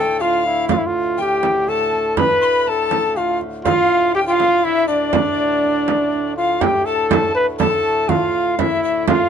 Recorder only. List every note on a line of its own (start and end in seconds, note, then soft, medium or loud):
0.00 0.18 G5 medium
0.20 0.66 F5 medium
0.68 0.82 F5 medium
1.18 1.64 G5 medium
1.68 2.18 A5 medium
2.17 2.40 B5 medium
2.41 2.69 B5 medium
2.41 2.46 C6 medium
2.67 3.16 A5 medium
3.16 3.39 F5 medium
3.65 4.16 F5 medium
4.15 4.27 G5 medium
4.27 4.33 G5 medium
4.32 4.66 F5 medium
4.65 4.87 E5 medium
4.87 6.32 D5 medium
6.38 6.64 F5 medium
6.62 6.85 G5 medium
6.85 7.09 A5 medium
7.10 7.37 A5 medium
7.59 8.11 A5 medium
8.09 8.61 F5 medium
8.59 8.83 E5 medium
8.84 9.10 E5 medium
9.09 9.29 F5 medium